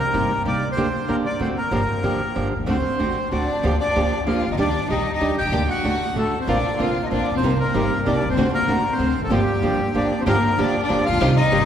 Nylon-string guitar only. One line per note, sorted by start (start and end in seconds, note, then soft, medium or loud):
0.13 0.30 C3 medium
0.13 0.31 G3 medium
0.13 0.31 A#3 medium
0.13 0.31 D#4 medium
0.13 0.31 G4 medium
0.45 0.62 C3 soft
0.45 0.62 G3 medium
0.45 0.62 A#3 medium
0.45 0.63 D#4 medium
0.45 0.63 G4 medium
0.77 0.86 D3 medium
0.77 0.86 A#3 medium
0.77 0.86 D4 medium
0.77 0.86 G4 medium
1.08 1.25 D3 medium
1.08 1.25 A#3 medium
1.08 1.26 D4 medium
1.08 1.26 G4 medium
1.40 1.57 D3 medium
1.40 1.57 A3 medium
1.40 1.57 C4 medium
1.40 1.57 F#4 medium
1.71 1.80 D3 medium
1.71 1.80 F3 medium
1.71 1.81 A#3 medium
1.71 1.81 D4 medium
1.71 1.81 G4 medium
2.03 2.20 D3 medium
2.03 2.20 F3 medium
2.03 2.21 A#3 medium
2.03 2.21 D4 medium
2.03 2.21 G4 medium
2.35 2.52 D3 soft
2.35 2.53 F3 medium
2.35 2.53 A#3 medium
2.35 2.53 D4 medium
2.35 2.53 G4 medium
2.66 2.76 D3 medium
2.66 2.76 A3 medium
2.66 2.77 C4 medium
2.66 2.77 F#4 medium
2.99 3.17 D3 medium
2.99 3.17 A3 medium
2.99 3.17 C4 medium
2.99 3.17 F#4 medium
3.32 3.49 D3 soft
3.32 3.49 A3 medium
3.32 3.49 C4 medium
3.32 3.49 F#4 medium
3.64 3.73 D3 medium
3.64 3.73 F3 medium
3.64 3.73 A#3 medium
3.64 3.73 D4 medium
3.64 3.73 G4 medium
3.96 4.12 D3 medium
3.96 4.12 F3 medium
3.96 4.13 A#3 medium
3.96 4.13 D4 medium
3.96 4.13 G4 medium
4.26 4.43 D3 medium
4.26 4.44 F3 medium
4.26 4.44 A#3 medium
4.26 4.44 D4 medium
4.26 4.44 G4 medium
4.58 4.67 D#3 medium
4.58 4.67 G3 medium
4.58 4.67 D4 medium
4.58 4.67 G4 medium
4.90 5.06 D#3 medium
4.90 5.06 G3 medium
4.90 5.07 D4 medium
4.90 5.07 G4 medium
5.20 5.37 D#3 soft
5.20 5.38 G3 medium
5.20 5.38 D4 medium
5.20 5.38 G4 medium
5.52 5.61 D3 medium
5.52 5.62 A#3 medium
5.52 5.62 D4 medium
5.52 5.62 G4 medium
5.84 6.01 D3 medium
5.84 6.01 A3 medium
5.84 6.01 D4 medium
5.84 6.01 F#4 medium
6.16 6.33 D3 soft
6.16 6.33 A3 soft
6.16 6.33 D4 medium
6.16 6.33 F#4 medium
6.48 6.57 D3 medium
6.48 6.57 A#3 medium
6.48 6.57 C4 medium
6.48 6.57 F4 medium
6.79 6.96 D3 soft
6.79 6.96 A#3 medium
6.79 6.97 C4 medium
6.79 6.97 F4 medium
7.11 7.28 D3 medium
7.11 7.28 A#3 medium
7.11 7.28 C4 medium
7.11 7.28 F4 medium
7.43 7.52 C3 medium
7.43 7.52 G3 medium
7.43 7.52 A#3 medium
7.43 7.53 D#4 medium
7.43 7.53 G4 medium
7.74 7.91 C3 medium
7.74 7.92 G3 medium
7.74 7.92 A#3 medium
7.74 7.92 D#4 medium
7.74 7.92 G4 medium
8.06 8.23 C3 medium
8.06 8.23 G3 medium
8.06 8.23 A#3 medium
8.06 8.23 D#4 medium
8.06 8.23 G4 medium
8.37 8.46 D3 medium
8.37 8.46 A3 medium
8.37 8.47 C4 medium
8.37 8.47 F#4 medium
8.68 8.85 D3 medium
8.68 8.85 A3 medium
8.68 8.85 C4 medium
8.68 8.85 F#4 medium
8.99 9.16 D3 medium
8.99 9.16 A3 medium
8.99 9.16 C4 medium
8.99 9.16 F#4 medium
9.31 9.40 D3 medium
9.31 9.40 F3 medium
9.31 9.40 A#3 medium
9.31 9.40 D4 medium
9.31 9.40 G4 medium
9.62 9.79 D3 soft
9.62 9.80 F3 medium
9.62 9.80 A#3 medium
9.62 9.80 D4 medium
9.62 9.80 G4 medium
9.95 10.12 D3 soft
9.95 10.12 F3 medium
9.95 10.12 A#3 medium
9.95 10.12 D4 medium
9.95 10.13 G4 medium
10.26 10.36 D3 medium
10.26 10.36 F3 medium
10.26 10.36 A#3 medium
10.26 10.36 D4 medium
10.26 10.36 G4 medium
10.58 10.75 D3 medium
10.58 10.75 F3 medium
10.58 10.75 A#3 medium
10.58 10.75 D4 medium
10.58 10.75 G4 medium
10.89 11.06 D3 medium
10.89 11.06 F3 medium
10.89 11.06 A#3 medium
10.89 11.06 D4 medium
10.89 11.07 G4 medium
11.20 11.30 C3 medium
11.20 11.30 D#3 medium
11.20 11.30 G3 medium
11.20 11.30 C4 medium
11.20 11.30 G4 medium
11.52 11.65 C3 medium
11.52 11.65 D#3 medium
11.52 11.65 G3 medium
11.52 11.65 C4 medium
11.52 11.65 G4 medium